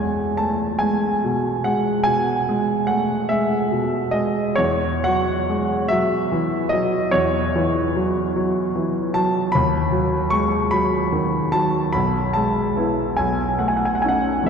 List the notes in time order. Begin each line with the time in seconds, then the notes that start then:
Already playing: E2 G#3 G#5
0.37 A3 A5
0.79 G#3 G#5
1.24 B2
1.64 G#3 F#5
2.04 B2 G#5
2.49 G#3
2.87 A3 F#5
3.29 G#3 E5
3.71 B2
4.11 G#3 D#5
4.56 E2 C#5
5.04 F#3 F#5
5.49 G#3
5.88 F#3 E5
6.32 E3
6.69 F#3 D#5
7.11 E2 C#5
7.56 E3
7.96 F#3
8.36 F#3
8.76 E3
9.14 F#3 A5
9.52 D#2 B5
9.92 F#3
10.30 G#3 C#6
10.71 F#3 B5
11.12 D#3
11.52 F#3 A5
11.93 B1 B5
12.33 G#3 A5
12.77 B3 E4
13.17 B1 G#5
13.59 A3 F#5
13.68 G#5
13.77 F#5
13.85 G#5
13.95 F#5
14.02 C#4 D#4 G#5
14.09 F#5
14.43 E2 G#3 B3 E5